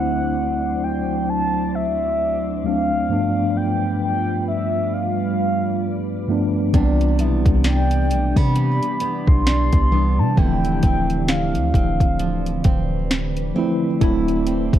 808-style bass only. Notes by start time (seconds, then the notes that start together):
6.74 C2
7.19 B1
7.46 C2
8.10 B1
8.37 C3
9.28 B1
9.73 C2
10.19 C3
10.38 D1
10.83 D1
11.55 D2
11.74 D1
12.65 D1
14.01 D1
14.73 D1